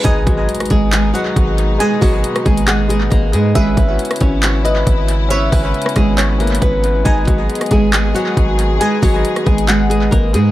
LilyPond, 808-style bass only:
\new Staff \with { instrumentName = "808-style bass" } { \clef bass \time 4/4 \key gis \minor \tempo 4 = 137 gis,,8 gis,,8 r8 gis,,4 r8 gis,,4 | r8 gis,,8 r8 gis,,4. gis,,8 gis,8 | gis,,8 gis,,8 r8 gis,,4. gis,,4~ | gis,,8 gis,,8 r8 gis,,4. gis,,4 |
gis,,8 gis,,8 r8 gis,,4 r8 gis,,4 | r8 gis,,8 r8 gis,,4. gis,,8 gis,8 | }